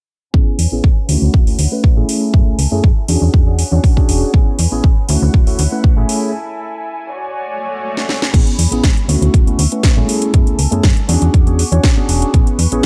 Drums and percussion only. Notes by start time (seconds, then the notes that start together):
0.34 kick
0.59 open hi-hat
0.84 kick
1.09 open hi-hat
1.34 kick
1.47 open hi-hat
1.59 open hi-hat
1.84 kick
2.09 open hi-hat
2.34 kick
2.59 open hi-hat
2.84 kick
3.08 open hi-hat
3.34 kick
3.59 open hi-hat
3.84 kick, open hi-hat
3.97 kick
4.09 open hi-hat
4.34 kick
4.59 open hi-hat
4.84 kick
5.09 open hi-hat
5.34 kick
5.47 open hi-hat
5.59 open hi-hat
5.84 kick
6.09 open hi-hat
7.97 snare
8.09 snare
8.22 snare
8.34 kick, closed hi-hat, crash, high conga, shaker
8.47 closed hi-hat, shaker
8.59 open hi-hat
8.71 closed hi-hat, high conga, shaker
8.84 kick, snare, closed hi-hat, low conga, shaker
8.97 closed hi-hat, shaker
9.08 open hi-hat, high conga, shaker
9.22 closed hi-hat, shaker
9.34 kick, closed hi-hat, shaker
9.47 closed hi-hat, high conga, shaker
9.59 open hi-hat, shaker
9.72 closed hi-hat, shaker
9.83 kick, snare, closed hi-hat
9.97 high conga, low conga, shaker
10.09 open hi-hat, shaker
10.22 closed hi-hat, shaker
10.34 kick, closed hi-hat, high conga, shaker
10.47 closed hi-hat, shaker
10.59 open hi-hat, shaker
10.72 closed hi-hat, high conga, shaker
10.83 kick, snare, closed hi-hat, low conga, shaker
10.97 closed hi-hat, shaker
11.09 open hi-hat, high conga, shaker
11.22 closed hi-hat, shaker
11.34 kick, closed hi-hat, shaker
11.47 closed hi-hat, high conga, shaker
11.59 open hi-hat, shaker
11.72 closed hi-hat
11.84 kick, snare, closed hi-hat
11.97 high conga, shaker
12.09 open hi-hat, shaker
12.22 closed hi-hat, shaker
12.34 kick, closed hi-hat, high conga, shaker
12.47 closed hi-hat, shaker
12.59 open hi-hat, shaker
12.72 closed hi-hat, high conga, shaker